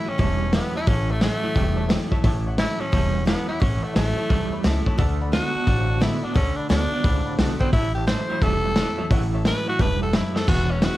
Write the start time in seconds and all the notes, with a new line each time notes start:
Already playing: A2 E4
0.06 A2 F#3 C#4 E4 C#5 E5 G5, muted upright bass stroke
0.18 E1 E2 A2 G3 C#5 E5 A5, kick, open hi-hat
0.41 C#5 E5 A5
0.53 A2 E3 F#3 A3 B3 C#4 E4 C#5 E5 G5, snare, open hi-hat
0.75 A2 F#3 C#4 E4 C#5 E5 A5, muted upright bass stroke
0.87 A1 A2 E3 C#4 C#5 E5 A5, kick, open hi-hat
1.09 A3 C#5 E5 A5
1.21 A2 E3 F#3 A3 C#4 E4 C#5 E5 F#5, snare, open hi-hat
1.42 A2 F#3 C#4 E4 C#5 E5 F#5, muted upright bass stroke
1.55 E1 E2 A2 G3 C#5 E5 G5, kick, open hi-hat
1.77 C#5 E5 A5
1.88 A2 E3 F#3 A3 C#4 E4 C#5 E5 G5, snare, open hi-hat
2.11 A2 F#3 C#4 E4 C#5 E5 A5, kick
2.24 A1 A2 E3 C#5 E5 A5, kick, open hi-hat
2.46 C#5 E5 F#5
2.58 A2 E3 F#3 A3 C#4 E4 C#5 E5 A5, snare, open hi-hat
2.80 A2 F#3 C#4 E4 C#5 E5 A5, muted upright bass stroke
2.92 E1 E2 A2 G3 C#5 E5 A5, kick, open hi-hat
3.15 C#5 E5 F#5
3.25 A2 E3 F#3 A3 B3 C#4 E4 C#5 E5 A5, snare, open hi-hat
3.48 A2 F#3 C#4 E4 C#5 E5 F#5, muted upright bass stroke
3.60 A1 A2 E3 C#4 C#5 E5 F#5, kick, open hi-hat
3.82 A3 C#5 E5 F#5, muted upright bass stroke
3.93 A1 A2 E3 F#3 A3 C#4 C#5 E5 A5, snare, open hi-hat
3.98 E4
4.17 A2 F#3 C#4 E4 C#5 E5 A5
4.29 B1 E2 A2 G3 C#5 E5 A5, kick, open hi-hat
4.52 C#5 E5 B5, muted upright bass stroke
4.63 C#2 A2 E3 F#3 A3 C#4 E4 C#5 E5 A5, snare, open hi-hat
4.86 A2 F#3 C#5 E5 A5, kick
4.98 D2 D3 A3 D5 F#5 A5, kick, open hi-hat
5.21 D5 F#5 B5
5.32 D3 A3 B3 D4 F#4 D5 A5, snare, open hi-hat
5.53 B3 F#4 D5 F#5 A5, muted upright bass stroke
5.67 A1 A2 D3 C4 D5 F#5 A5, kick, open hi-hat
5.89 D5 F#5 A5
6.00 D3 A3 B3 D4 E4 F#4 D5 F#5 A5, snare, open hi-hat
6.21 D3 B3 D4 F#4 D5 F#5 A5, muted upright bass stroke
6.34 D2 D3 A3 C#4 D5 F#5 A5, kick, open hi-hat
6.56 D4 D5 F#5 B5, muted upright bass stroke
6.69 D2 D3 A3 B3 D4 F#4 D5 F#5 A5, snare, open hi-hat
6.91 D3 B3 D4 F#4 D5 F#5 A5
7.04 C#2 A2 D3 C4 D5 F#5 B5, kick, open hi-hat
7.26 D5 F#5 B5
7.38 B1 D3 A3 B3 D4 F#4 D5 F#5 A5, snare, open hi-hat
7.60 D3 B3 C4 D5 F#5 B5, kick
7.73 A1 A2 E3 E4 C#5 E5 A5, kick, open hi-hat
7.95 G4 C#5 E5 A5
8.07 A2 E3 F#3 A3 C#4 E4 C5 C#5 E5 A5, snare, open hi-hat
8.29 A2 F#3 C#4 E4 C#5 E5 B5, muted upright bass stroke
8.42 E1 E2 A2 G3 A4 C#5 E5 A5, kick, open hi-hat
8.65 C#5 E5 A5
8.76 A2 E3 F#3 A3 C#4 E4 C#5 E5, snare, open hi-hat
8.98 A2 F#3 C#4 C#5 E5 A5, muted upright bass stroke
9.11 A1 A2 E3 C#5 E5 F#5, kick, open hi-hat
9.34 C#5 E5 A5
9.45 A2 E3 F#3 A3 C#4 E4 B4 C#5 E5 A5, snare, open hi-hat
9.66 A2 F#3 C#4 E4 F#4 C#5 E5 F#5, muted upright bass stroke
9.79 E1 G2 A2 G3 B4 C#5 E5 A5, kick, open hi-hat
10.02 A4 C#5 E5 F#5
10.13 F#2 A2 F#3 E4 C#5 E5 A5, snare, open hi-hat
10.35 A2 F#3 A4 C#5 E5 A5, muted upright bass stroke, snare
10.47 E1 E2 B2 F#4 B4 E5 G#5, kick, open hi-hat, splash
10.70 C#4 B4 E5 F#5
10.81 E2 C#3 E3 G#3 B3 E4 F#4 B4 E5 F#5, snare, open hi-hat